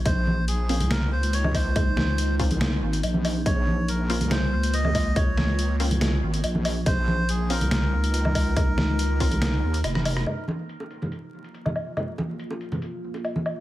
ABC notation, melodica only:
X:1
M:4/4
L:1/8
Q:1/4=141
K:Bbm
V:1 name="Melodica"
c2 A2 B c d c- | c3 z4 z | d2 B2 c2 e2 | d3 z4 z |
c2 A B B4- | B6 z2 | z8 | z8 |]